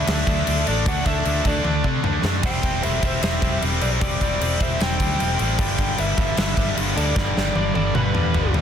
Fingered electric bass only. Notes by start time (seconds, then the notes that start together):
0.07 D2
0.27 D2
0.47 D2
0.67 A1
0.86 D2
1.06 D2
1.26 D2
1.45 D2
1.65 D2
1.84 C3
2.04 D2
2.23 F#2
2.44 E1
2.64 E1
2.84 E1
3.03 E1
3.22 E1
3.42 E1
3.62 E1
3.81 B1
4.02 E1
4.21 E1
4.41 E1
4.61 E1
4.80 E1
5.00 D2
5.20 E1
5.40 A1
5.59 G1
5.79 G1
5.99 G1
6.18 G1
6.38 G1
6.57 G1
6.77 G1
6.96 D2
7.16 G1
7.36 G1
7.55 G1
7.75 G1
7.95 G1
8.15 E2
8.35 G1
8.55 D#2